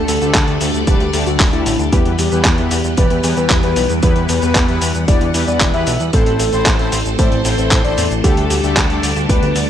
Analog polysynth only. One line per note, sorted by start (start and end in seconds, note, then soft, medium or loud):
0.00 0.12 D3 medium
0.00 0.12 A3 medium
0.00 0.12 D4 medium
0.00 0.12 G4 medium
0.00 0.12 A4 loud
0.21 0.45 D3 loud
0.21 0.45 A3 medium
0.21 0.45 D4 medium
0.21 0.45 G4 medium
0.21 0.45 A4 loud
0.48 0.67 D3 medium
0.48 0.67 A3 medium
0.48 0.67 D4 medium
0.48 0.67 G4 medium
0.48 0.67 A4 loud
0.87 1.06 D3 medium
0.87 1.06 A3 medium
0.87 1.06 D4 medium
0.87 1.06 G4 medium
0.87 1.06 B4 medium
1.14 1.50 D3 medium
1.14 1.50 A3 medium
1.14 1.50 D4 medium
1.14 1.50 G4 medium
1.14 1.50 A4 medium
1.53 1.72 D3 medium
1.53 1.72 A3 medium
1.53 1.72 D4 medium
1.53 1.72 G4 medium
1.53 1.72 A4 loud
1.92 2.23 E3 medium
1.92 2.23 B3 medium
1.92 2.23 E4 medium
1.92 2.23 G4 medium
1.92 2.23 B4 loud
2.32 2.55 E3 loud
2.32 2.55 B3 medium
2.32 2.55 E4 medium
2.32 2.55 G4 medium
2.32 2.55 B4 loud
2.58 2.77 E3 medium
2.58 2.77 B3 medium
2.58 2.77 E4 medium
2.58 2.77 G4 medium
2.58 2.77 B4 loud
2.98 3.17 E3 medium
2.98 3.17 B3 medium
2.98 3.17 E4 medium
2.98 3.17 G4 medium
2.98 3.17 D5 medium
3.24 3.60 E3 medium
3.24 3.60 B3 medium
3.24 3.60 E4 medium
3.24 3.60 G4 medium
3.24 3.60 B4 medium
3.63 3.83 E3 loud
3.63 3.82 B3 medium
3.63 3.82 E4 medium
3.63 3.83 G4 medium
3.63 3.82 B4 loud
4.03 4.33 E3 medium
4.03 4.33 B3 medium
4.03 4.33 E4 medium
4.03 4.33 G4 medium
4.03 4.33 B4 loud
4.42 4.66 E3 loud
4.42 4.66 B3 medium
4.42 4.66 E4 medium
4.42 4.66 G4 medium
4.42 4.66 B4 loud
4.68 4.88 E3 medium
4.68 4.88 B3 medium
4.68 4.88 E4 medium
4.68 4.88 G4 medium
4.68 4.88 B4 loud
5.08 5.27 E3 medium
5.08 5.27 B3 medium
5.08 5.27 E4 medium
5.08 5.27 G4 medium
5.08 5.27 D5 medium
5.34 5.71 E3 medium
5.34 5.71 B3 medium
5.34 5.71 E4 medium
5.34 5.71 G4 medium
5.34 5.71 B4 loud
5.74 5.93 E3 loud
5.74 5.93 B3 medium
5.74 5.93 E4 medium
5.74 5.93 G4 medium
5.74 5.93 B4 loud
6.13 6.44 A2 medium
6.13 6.44 C4 medium
6.13 6.44 E4 medium
6.13 6.44 A4 medium
6.13 6.44 C5 loud
6.53 6.76 A2 loud
6.53 6.76 C4 medium
6.53 6.76 E4 medium
6.53 6.76 A4 medium
6.53 6.76 C5 loud
6.79 6.98 A2 medium
6.79 6.98 C4 medium
6.79 6.98 E4 medium
6.79 6.98 A4 medium
6.79 6.98 C5 loud
7.19 7.38 A2 medium
7.19 7.38 C4 medium
7.19 7.38 E4 medium
7.19 7.38 A4 medium
7.19 7.38 D5 medium
7.45 7.81 A2 medium
7.45 7.81 C4 medium
7.45 7.81 E4 medium
7.45 7.81 A4 medium
7.45 7.81 C5 loud
7.84 8.04 A2 medium
7.84 8.04 C4 medium
7.84 8.04 E4 medium
7.84 8.03 A4 medium
7.84 8.04 C5 loud
8.24 8.54 D3 medium
8.24 8.54 A3 medium
8.24 8.54 D4 medium
8.24 8.54 G4 medium
8.24 8.54 A4 loud
8.63 8.87 D3 loud
8.63 8.87 A3 medium
8.63 8.87 D4 medium
8.63 8.87 G4 medium
8.63 8.87 A4 loud
8.90 9.09 D3 medium
8.90 9.09 A3 medium
8.90 9.09 D4 medium
8.90 9.09 G4 medium
8.90 9.09 A4 loud
9.29 9.48 D3 medium
9.29 9.48 A3 medium
9.29 9.48 D4 medium
9.29 9.48 G4 medium
9.29 9.48 B4 medium